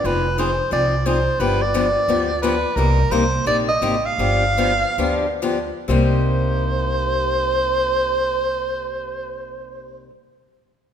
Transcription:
0.04 upright bass F1, steel-string acoustic guitar F3 C4 D#4 G#4, soprano saxophone B4
0.38 steel-string acoustic guitar F3 C4 D#4 G#4, soprano saxophone C5
0.71 upright bass C2, steel-string acoustic guitar F3 C4 D#4 G#4, soprano saxophone D5
1.06 steel-string acoustic guitar F3 C4 D#4 G#4, soprano saxophone C5
1.40 upright bass G1, steel-string acoustic guitar D3 F3 B3 D4 G4, soprano saxophone B4
1.62 soprano saxophone D5
1.74 steel-string acoustic guitar D3 F3 B3 D4 G4
2.08 upright bass D2, steel-string acoustic guitar D3 F3 B3 D4 G4
2.42 steel-string acoustic guitar D3 F3 B3 D4 G4, soprano saxophone B4
2.76 upright bass C2, steel-string acoustic guitar C3 G3 A#3 D#4 G4, soprano saxophone A#4
3.10 upright bass C2, steel-string acoustic guitar C3 G3 A#3 D#4 G4, soprano saxophone C5
3.46 upright bass A#1, steel-string acoustic guitar C3 G3 A#3 D#4 G4, soprano saxophone D5
3.68 soprano saxophone D#5
3.81 upright bass G#1, steel-string acoustic guitar C3 G3 A#3 D#4 G4
4.06 soprano saxophone F5
4.18 upright bass G1, steel-string acoustic guitar D3 F3 B3 D4 G4
4.57 steel-string acoustic guitar D3 F3 B3 D4 G4
4.98 upright bass D2, steel-string acoustic guitar D3 F3 B3 D4 G4
5.42 steel-string acoustic guitar D3 F3 B3 D4 G4
5.88 upright bass C2, steel-string acoustic guitar C3 G3 A#3 D#4 G4, soprano saxophone C5

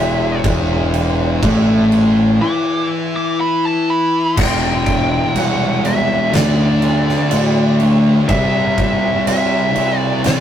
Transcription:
Already playing: fingered electric bass E1, distorted electric guitar E2 E3, lead electric guitar E5
0.44 fingered electric bass E1, distorted electric guitar E2 E3, kick, crash
0.94 crash
1.43 fingered electric bass A1, distorted electric guitar A2 A3, kick, crash
1.92 crash
2.41 distorted electric guitar E3 E4, lead electric guitar D6
3.16 lead electric guitar D6
3.41 lead electric guitar B5
3.65 lead electric guitar A5
3.90 lead electric guitar B5
4.37 fingered electric bass E1, distorted electric guitar E2 B2 E3, lead electric guitar G5, kick, crash
4.86 kick, crash
5.35 fingered electric bass C2, lead electric guitar F#5, crash
5.84 distorted electric guitar E2 B2 E3, lead electric guitar E5, crash
6.33 fingered electric bass D2, distorted electric guitar D3 A3 D4, lead electric guitar D5, snare, crash
6.82 crash
7.09 snare
7.31 fingered electric bass A2, crash
7.80 distorted electric guitar D3 A3 D4, crash
8.29 fingered electric bass C2, distorted electric guitar C3 G3 C4, lead electric guitar E5, kick, crash
8.78 kick, crash
9.27 fingered electric bass C2, lead electric guitar E5, crash
9.76 fingered electric bass C2, distorted electric guitar C3 G3 C4, crash
9.98 lead electric guitar D5
10.24 fingered electric bass C2, lead electric guitar D5, snare, crash

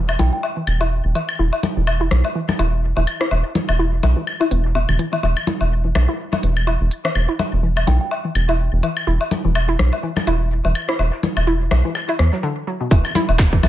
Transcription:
Already playing: analog synth bass E1, downlifter
0.09 high woodblock, low woodblock
0.19 analog synth bass B1, synth arpeggio sound E4, synth bell G5, closed hi-hat, low conga
0.33 synth bell G5
0.43 low woodblock
0.57 synth arpeggio sound E3
0.67 analog synth bass E1, closed hi-hat, high woodblock
0.80 synth arpeggio sound E4, snare, low woodblock
0.91 closed hi-hat
1.05 analog synth bass E1
1.15 synth arpeggio sound E3, closed hi-hat, low woodblock
1.29 high woodblock
1.39 analog synth bass E1, synth arpeggio sound E4, closed hi-hat
1.53 low woodblock
1.63 closed hi-hat, low conga
1.77 analog synth bass E1, synth arpeggio sound E3
1.87 closed hi-hat, high woodblock, low woodblock
2.01 synth arpeggio sound E4
2.11 analog synth bass B1, cross-stick, closed hi-hat, low conga
2.25 low woodblock
2.35 synth arpeggio sound E3, closed hi-hat
2.49 snare, low conga, high woodblock
2.59 analog synth bass E1, synth arpeggio sound E4, closed hi-hat, low woodblock
2.84 closed hi-hat
2.97 analog synth bass E1, synth arpeggio sound E3, low woodblock
3.07 closed hi-hat, high woodblock
3.21 synth arpeggio sound E4, cross-stick
3.31 analog synth bass E1, low woodblock
3.45 snare
3.55 synth arpeggio sound E3, closed hi-hat, low conga
3.69 analog synth bass E1, high woodblock, low woodblock
3.79 synth arpeggio sound E4, closed hi-hat
3.93 closed hi-hat
4.03 analog synth bass B1, closed hi-hat, low conga, low woodblock
4.17 synth arpeggio sound E3
4.27 closed hi-hat, high woodblock
4.41 synth arpeggio sound E4, low woodblock
4.51 analog synth bass E1, synth arpeggio sound B3, closed hi-hat
4.65 snare
4.74 synth arpeggio sound B2, closed hi-hat, low woodblock
4.89 analog synth bass E1, synth arpeggio sound D3, high woodblock
4.99 synth arpeggio sound E3, closed hi-hat
5.13 synth arpeggio sound E3, low woodblock
5.23 analog synth bass E1, synth arpeggio sound E3, closed hi-hat, low woodblock
5.37 high woodblock
5.47 synth arpeggio sound E4, closed hi-hat, low conga
5.61 analog synth bass E1, low woodblock
5.72 closed hi-hat
5.85 synth arpeggio sound E3
5.95 analog synth bass B1, cross-stick, closed hi-hat, low conga, high woodblock, low woodblock
6.09 synth arpeggio sound E4
6.20 closed hi-hat
6.33 snare, low conga, low woodblock
6.43 analog synth bass E1, synth arpeggio sound E3, closed hi-hat, open hi-hat
6.57 high woodblock
6.67 synth arpeggio sound E4, closed hi-hat, low woodblock
6.81 analog synth bass E1, closed hi-hat
6.91 closed hi-hat
7.05 synth arpeggio sound E3, cross-stick, low woodblock
7.15 analog synth bass E1, closed hi-hat, high woodblock
7.29 synth arpeggio sound E4, snare
7.39 closed hi-hat, low conga, low woodblock
7.53 analog synth bass E1
7.63 synth arpeggio sound E3, closed hi-hat
7.77 high woodblock, low woodblock
7.87 analog synth bass B1, synth arpeggio sound E4, synth bell G5, closed hi-hat, low conga
8.01 synth bell G5
8.11 closed hi-hat, low woodblock
8.25 synth arpeggio sound E3
8.35 analog synth bass E1, closed hi-hat, high woodblock
8.49 synth arpeggio sound E4, snare, low woodblock
8.58 closed hi-hat
8.73 analog synth bass E1
8.83 synth arpeggio sound E3, closed hi-hat, low woodblock
8.97 high woodblock
9.07 analog synth bass E1, synth arpeggio sound E4, closed hi-hat
9.21 low woodblock
9.31 closed hi-hat, low conga
9.45 analog synth bass E1, synth arpeggio sound E3
9.55 closed hi-hat, high woodblock, low woodblock
9.69 synth arpeggio sound E4
9.79 analog synth bass B1, cross-stick, closed hi-hat, low conga
9.93 low woodblock
10.03 synth arpeggio sound E3, closed hi-hat
10.17 snare, low conga, high woodblock
10.27 analog synth bass E1, synth arpeggio sound E4, closed hi-hat, low woodblock
10.51 closed hi-hat
10.64 analog synth bass E1, synth arpeggio sound E3, closed hi-hat, low woodblock
10.75 closed hi-hat, high woodblock
10.89 synth arpeggio sound E4, cross-stick
10.99 analog synth bass E1, closed hi-hat, low woodblock
11.12 snare
11.23 synth arpeggio sound E3, closed hi-hat, low conga
11.37 analog synth bass E1, high woodblock, low woodblock
11.47 synth arpeggio sound E4, closed hi-hat
11.61 closed hi-hat
11.71 analog synth bass B1, cross-stick, closed hi-hat, low conga, low woodblock
11.85 synth arpeggio sound E3
11.95 snare, closed hi-hat, high woodblock
12.09 synth arpeggio sound E4, low woodblock
12.19 analog synth bass E2, synth arpeggio sound E3, cross-stick, snare, closed hi-hat
12.32 synth arpeggio sound F#3, snare, closed hi-hat
12.43 synth arpeggio sound D3
12.67 synth arpeggio sound F#3
12.81 synth arpeggio sound B2
12.91 analog synth bass E1, synth arpeggio sound E3, kick, closed hi-hat, low woodblock, shaker
13.05 high woodblock, shaker
13.15 synth arpeggio sound E4, closed hi-hat, low conga
13.29 analog synth bass E1, low woodblock, shaker
13.38 kick, snare, clap, closed hi-hat, shaker
13.53 synth arpeggio sound E3, kick, shaker
13.63 analog synth bass B1, closed hi-hat, low conga, high woodblock, low woodblock

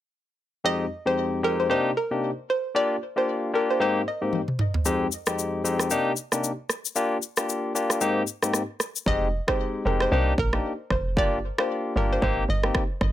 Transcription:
0.64 tine electric piano F2 G#3 C4 D#4 G4, synth pluck D#5
1.05 tine electric piano F2 G#3 C4 D#4 G4, synth pluck C5
1.43 tine electric piano F2 G#3 C4 D#4 G4, synth pluck A#4
1.60 synth pluck C5
1.69 tine electric piano C3 A#3 D4 D#4 G4, synth pluck C5
1.97 synth pluck A#4
2.11 tine electric piano C3 A#3 D4 D#4 G4
2.50 synth pluck C5
2.74 tine electric piano A#3 D4 F4 G4, synth pluck D5
3.16 tine electric piano A#3 D4 F4 G4, synth pluck C5
3.53 tine electric piano A#3 D4 F4 G4, synth pluck A#4
3.70 synth pluck C5
3.80 tine electric piano G#2 A#3 C4 D#4 G4, synth pluck C5
4.08 synth pluck D#5
4.21 tine electric piano G#2 A#3 C4 D#4 G4
4.33 high tom
4.48 mid tom
4.59 mid tom
4.74 floor tom
4.85 tine electric piano F2 G#3 C4 D#4 G4, shaker
5.12 shaker
5.27 tine electric piano F2 G#3 C4 D#4 G4, cross-stick, shaker
5.39 shaker
5.64 tine electric piano F2 G#3 C4 D#4 G4, shaker
5.79 cross-stick, shaker
5.90 tine electric piano C3 A#3 D4 D#4 G4, shaker
6.16 shaker
6.32 tine electric piano C3 A#3 D4 D#4 G4, cross-stick, shaker
6.44 shaker
6.70 cross-stick, shaker
6.85 shaker
6.96 tine electric piano A#3 D4 F4 G4, shaker
7.22 shaker
7.37 tine electric piano A#3 D4 F4 G4, cross-stick, shaker
7.49 shaker
7.75 tine electric piano A#3 D4 F4 G4, shaker
7.90 cross-stick, shaker
8.01 tine electric piano G#2 A#3 C4 D#4 G4, shaker
8.27 shaker
8.42 tine electric piano G#2 A#3 C4 D#4 G4, cross-stick, shaker
8.53 cross-stick, shaker
8.80 cross-stick, shaker
8.96 shaker
9.06 log drum bass F1, tine electric piano G#3 C4 D#4 G4, synth pluck D#5, kick
9.48 tine electric piano G#3 C4 D#4 G4, synth pluck C5, kick, cross-stick
9.85 log drum bass F1, tine electric piano G#3 C4 D#4 G4, synth pluck A#4
10.00 synth pluck C5, cross-stick
10.11 log drum bass C2, tine electric piano A#3 D4 D#4 G4, synth pluck C5
10.38 log drum bass A#1, synth pluck A#4, kick
10.53 tine electric piano A#3 D4 D#4 G4, cross-stick
10.90 log drum bass F1, synth pluck C5, kick, cross-stick
11.17 log drum bass G1, tine electric piano A#3 D4 F4 G4, synth pluck D5, kick
11.58 tine electric piano A#3 D4 F4 G4, synth pluck C5, cross-stick
11.96 log drum bass G1, tine electric piano A#3 D4 F4 G4, synth pluck A#4
12.13 synth pluck C5
12.22 log drum bass G#1, tine electric piano A#3 C4 D#4 G4, synth pluck C5, kick
12.49 log drum bass G1, synth pluck D#5
12.63 tine electric piano A#3 C4 D#4 G4, cross-stick
12.75 kick, cross-stick
13.01 log drum bass G1, kick, cross-stick

